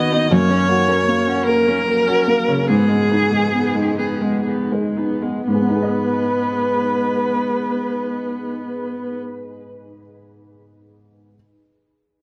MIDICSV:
0, 0, Header, 1, 5, 480
1, 0, Start_track
1, 0, Key_signature, 5, "minor"
1, 0, Tempo, 775194
1, 188, Time_signature, 6, 3, 24, 8
1, 1153, Tempo, 836820
1, 2113, Tempo, 934579
1, 2593, Tempo, 980392
1, 6387, End_track
2, 0, Start_track
2, 0, Title_t, "Violin"
2, 0, Program_c, 0, 40
2, 0, Note_on_c, 0, 75, 119
2, 196, Note_on_c, 0, 73, 127
2, 205, Note_off_c, 0, 75, 0
2, 902, Note_off_c, 0, 73, 0
2, 906, Note_on_c, 0, 70, 127
2, 1617, Note_on_c, 0, 68, 122
2, 1625, Note_off_c, 0, 70, 0
2, 2341, Note_off_c, 0, 68, 0
2, 2344, Note_on_c, 0, 68, 82
2, 2586, Note_off_c, 0, 68, 0
2, 3078, Note_on_c, 0, 71, 92
2, 4889, Note_off_c, 0, 71, 0
2, 6387, End_track
3, 0, Start_track
3, 0, Title_t, "Ambient pad"
3, 0, Program_c, 1, 92
3, 0, Note_on_c, 1, 63, 77
3, 0, Note_on_c, 1, 66, 80
3, 0, Note_on_c, 1, 71, 74
3, 162, Note_off_c, 1, 71, 0
3, 191, Note_off_c, 1, 63, 0
3, 192, Note_on_c, 1, 61, 76
3, 198, Note_on_c, 1, 70, 86
3, 1622, Note_off_c, 1, 61, 0
3, 1623, Note_off_c, 1, 66, 0
3, 1625, Note_off_c, 1, 70, 0
3, 1627, Note_on_c, 1, 71, 78
3, 1628, Note_on_c, 1, 63, 79
3, 1628, Note_on_c, 1, 68, 75
3, 3083, Note_off_c, 1, 68, 0
3, 3084, Note_off_c, 1, 63, 0
3, 3084, Note_off_c, 1, 71, 0
3, 3089, Note_on_c, 1, 68, 77
3, 3090, Note_on_c, 1, 63, 79
3, 3090, Note_on_c, 1, 71, 76
3, 4894, Note_off_c, 1, 68, 0
3, 4895, Note_off_c, 1, 63, 0
3, 4895, Note_off_c, 1, 71, 0
3, 6387, End_track
4, 0, Start_track
4, 0, Title_t, "Upright piano"
4, 0, Program_c, 2, 0
4, 0, Control_c, 2, 64, 127
4, 0, Note_on_c, 2, 39, 86
4, 0, Note_on_c, 2, 51, 69
4, 0, Note_on_c, 2, 59, 79
4, 0, Note_on_c, 2, 66, 76
4, 0, Note_on_c, 2, 71, 75
4, 76, Note_off_c, 2, 59, 0
4, 76, Note_on_c, 2, 59, 79
4, 140, Note_off_c, 2, 66, 0
4, 166, Note_off_c, 2, 39, 0
4, 190, Note_off_c, 2, 59, 0
4, 192, Note_on_c, 2, 42, 94
4, 198, Control_c, 2, 64, 0
4, 200, Note_off_c, 2, 51, 0
4, 202, Note_off_c, 2, 71, 0
4, 312, Note_on_c, 2, 58, 61
4, 319, Control_c, 2, 64, 127
4, 430, Note_on_c, 2, 66, 77
4, 498, Note_off_c, 2, 58, 0
4, 548, Note_on_c, 2, 70, 81
4, 618, Note_off_c, 2, 66, 0
4, 671, Note_on_c, 2, 58, 72
4, 739, Note_off_c, 2, 70, 0
4, 795, Note_on_c, 2, 66, 72
4, 862, Note_off_c, 2, 58, 0
4, 918, Note_on_c, 2, 70, 79
4, 986, Note_off_c, 2, 66, 0
4, 1040, Note_on_c, 2, 58, 61
4, 1109, Note_off_c, 2, 70, 0
4, 1163, Note_on_c, 2, 70, 58
4, 1227, Note_off_c, 2, 58, 0
4, 1278, Note_on_c, 2, 66, 69
4, 1343, Note_off_c, 2, 70, 0
4, 1391, Note_on_c, 2, 58, 73
4, 1460, Note_off_c, 2, 66, 0
4, 1508, Note_on_c, 2, 49, 66
4, 1576, Note_off_c, 2, 58, 0
4, 1599, Note_off_c, 2, 42, 0
4, 1623, Note_off_c, 2, 49, 0
4, 1630, Control_c, 2, 64, 0
4, 1631, Note_on_c, 2, 44, 83
4, 1718, Control_c, 2, 64, 127
4, 1748, Note_on_c, 2, 59, 59
4, 1872, Note_on_c, 2, 63, 66
4, 1940, Note_off_c, 2, 59, 0
4, 1991, Note_on_c, 2, 68, 69
4, 2067, Note_off_c, 2, 63, 0
4, 2117, Note_on_c, 2, 59, 51
4, 2184, Note_off_c, 2, 68, 0
4, 2231, Note_on_c, 2, 63, 59
4, 2302, Note_off_c, 2, 59, 0
4, 2346, Note_on_c, 2, 68, 53
4, 2420, Note_off_c, 2, 63, 0
4, 2470, Note_on_c, 2, 59, 47
4, 2542, Note_off_c, 2, 68, 0
4, 2595, Note_on_c, 2, 68, 46
4, 2666, Note_off_c, 2, 59, 0
4, 2715, Note_on_c, 2, 71, 51
4, 2789, Note_off_c, 2, 68, 0
4, 2838, Note_on_c, 2, 63, 48
4, 2914, Note_off_c, 2, 71, 0
4, 2965, Note_on_c, 2, 59, 49
4, 3036, Note_off_c, 2, 63, 0
4, 3069, Note_off_c, 2, 44, 0
4, 3085, Note_off_c, 2, 59, 0
4, 3086, Note_on_c, 2, 44, 63
4, 3095, Control_c, 2, 64, 0
4, 3119, Note_on_c, 2, 56, 62
4, 3154, Note_on_c, 2, 59, 68
4, 3189, Note_on_c, 2, 63, 65
4, 3190, Control_c, 2, 64, 127
4, 3221, Note_on_c, 2, 68, 65
4, 3256, Note_on_c, 2, 75, 66
4, 5235, Note_off_c, 2, 44, 0
4, 5252, Note_off_c, 2, 56, 0
4, 5269, Note_off_c, 2, 59, 0
4, 5287, Note_off_c, 2, 63, 0
4, 5303, Note_off_c, 2, 68, 0
4, 5321, Note_off_c, 2, 75, 0
4, 5966, Control_c, 2, 64, 0
4, 6387, End_track
5, 0, Start_track
5, 0, Title_t, "Viola"
5, 0, Program_c, 3, 41
5, 0, Note_on_c, 3, 59, 83
5, 77, Note_on_c, 3, 63, 78
5, 86, Note_off_c, 3, 59, 0
5, 191, Note_off_c, 3, 63, 0
5, 195, Note_on_c, 3, 58, 91
5, 308, Note_on_c, 3, 61, 88
5, 317, Note_off_c, 3, 58, 0
5, 421, Note_on_c, 3, 58, 78
5, 430, Note_off_c, 3, 61, 0
5, 545, Note_on_c, 3, 61, 68
5, 554, Note_off_c, 3, 58, 0
5, 657, Note_off_c, 3, 61, 0
5, 661, Note_on_c, 3, 58, 76
5, 784, Note_on_c, 3, 61, 69
5, 794, Note_off_c, 3, 58, 0
5, 907, Note_on_c, 3, 58, 72
5, 916, Note_off_c, 3, 61, 0
5, 1032, Note_on_c, 3, 61, 71
5, 1041, Note_off_c, 3, 58, 0
5, 1146, Note_off_c, 3, 61, 0
5, 1150, Note_on_c, 3, 58, 81
5, 1269, Note_on_c, 3, 61, 70
5, 1278, Note_off_c, 3, 58, 0
5, 1385, Note_on_c, 3, 58, 75
5, 1394, Note_off_c, 3, 61, 0
5, 1507, Note_on_c, 3, 61, 67
5, 1515, Note_off_c, 3, 58, 0
5, 1623, Note_off_c, 3, 61, 0
5, 1626, Note_on_c, 3, 59, 78
5, 1740, Note_on_c, 3, 56, 69
5, 1749, Note_off_c, 3, 59, 0
5, 1862, Note_on_c, 3, 59, 62
5, 1870, Note_off_c, 3, 56, 0
5, 1985, Note_on_c, 3, 56, 59
5, 1993, Note_off_c, 3, 59, 0
5, 2104, Note_off_c, 3, 56, 0
5, 2108, Note_on_c, 3, 59, 70
5, 2222, Note_on_c, 3, 56, 63
5, 2230, Note_off_c, 3, 59, 0
5, 2340, Note_on_c, 3, 59, 62
5, 2348, Note_off_c, 3, 56, 0
5, 2462, Note_on_c, 3, 56, 56
5, 2469, Note_off_c, 3, 59, 0
5, 2582, Note_off_c, 3, 56, 0
5, 2585, Note_on_c, 3, 59, 63
5, 2714, Note_on_c, 3, 56, 50
5, 2721, Note_off_c, 3, 59, 0
5, 2838, Note_on_c, 3, 59, 53
5, 2845, Note_off_c, 3, 56, 0
5, 2961, Note_on_c, 3, 56, 50
5, 2968, Note_off_c, 3, 59, 0
5, 3083, Note_off_c, 3, 56, 0
5, 3086, Note_on_c, 3, 59, 73
5, 4893, Note_off_c, 3, 59, 0
5, 6387, End_track
0, 0, End_of_file